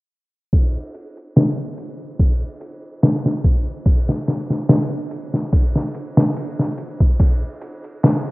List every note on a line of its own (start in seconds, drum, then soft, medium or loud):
0.53 kick medium
0.53 ride medium
0.95 ride medium
1.17 ride soft
1.36 snare loud
1.36 ride medium
1.78 ride medium
2.19 kick medium
2.19 ride medium
2.61 ride medium
3.03 snare medium
3.03 ride medium
3.26 snare soft
3.44 kick medium
3.44 ride medium
3.86 kick medium
3.86 ride medium
4.09 snare soft
4.28 snare soft
4.28 ride medium
4.50 snare soft
4.69 snare loud
4.69 ride medium
5.11 ride medium
5.34 snare soft
5.53 kick medium
5.53 ride medium
5.76 snare soft
5.94 ride medium
6.17 snare medium
6.36 ride medium
6.59 snare soft
6.78 ride medium
7.00 kick medium
7.20 kick medium
7.20 ride medium
7.61 ride medium
7.84 ride soft
8.03 snare loud
8.03 ride medium